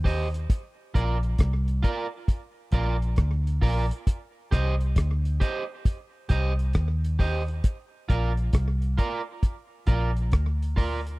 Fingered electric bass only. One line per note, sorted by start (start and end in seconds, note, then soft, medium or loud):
0.00 0.46 D#2 medium
0.95 1.37 A#1 medium
1.39 1.81 C2 medium
2.73 3.15 A#1 loud
3.18 3.60 D2 loud
3.62 3.90 A#1 medium
4.53 4.94 C2 medium
4.96 5.38 D2 medium
6.30 6.72 C2 medium
6.75 7.60 D#2 medium
8.10 8.51 A#1 medium
8.54 8.96 C2 medium
9.88 10.33 A#1 medium
10.33 11.18 D2 medium